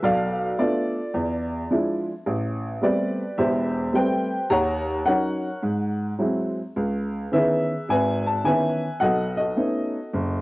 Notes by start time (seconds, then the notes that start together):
0.03 B1 A4 D5 F5
0.59 A3 B3 D4 F4 A4 D5
1.14 E2
1.71 F3 G#3 D4 E4
2.26 A1
2.82 G3 A3 B3 C4 G4 B4 D5
3.38 E1 E2 G4 C5 E5
3.93 G3 A3 C4 B4 C5 G5
4.50 D#2 C#5 F#5 A#5
5.06 F#3 C#4 D#4 A#4 C#5 F#5
5.63 G#2
6.19 F#3 G#3 C4 E4
6.76 C#2
7.32 D#3 E3 B3 C#4 G#4 B4 E5
7.88 G#1 B4 E5 G#5
8.26 A5
8.44 D#3 E3 B3 C#4 B4 E5 G#5
9.00 B1 A4 D#5 F#5
9.37 F#4 A4 D#5
9.56 A3 B3 C#4 D#4
10.13 F#1